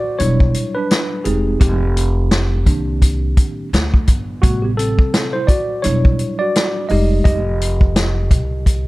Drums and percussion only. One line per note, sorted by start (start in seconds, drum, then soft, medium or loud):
0.20 closed hi-hat medium
0.40 kick medium
0.54 closed hi-hat medium
0.91 snare medium
0.91 closed hi-hat medium
1.25 closed hi-hat medium
1.61 kick loud
1.61 closed hi-hat medium
1.97 closed hi-hat medium
2.31 snare loud
2.31 closed hi-hat medium
2.66 kick medium
2.66 closed hi-hat medium
3.02 kick medium
3.02 closed hi-hat medium
3.37 kick medium
3.37 closed hi-hat medium
3.74 snare loud
3.74 closed hi-hat medium
3.94 kick medium
4.07 kick medium
4.07 closed hi-hat medium
4.43 kick loud
4.43 closed hi-hat medium
4.79 closed hi-hat medium
4.99 kick medium
5.14 snare loud
5.14 closed hi-hat medium
5.48 kick medium
5.48 closed hi-hat medium
5.84 closed hi-hat medium
6.05 kick medium
6.19 closed hi-hat medium
6.55 snare loud
6.55 closed hi-hat medium
6.89 open hi-hat soft
7.25 kick loud
7.25 closed hi-hat medium
7.61 closed hi-hat medium
7.81 kick medium
7.96 snare loud
7.96 closed hi-hat medium
8.31 kick medium
8.31 closed hi-hat medium
8.66 kick medium
8.66 closed hi-hat medium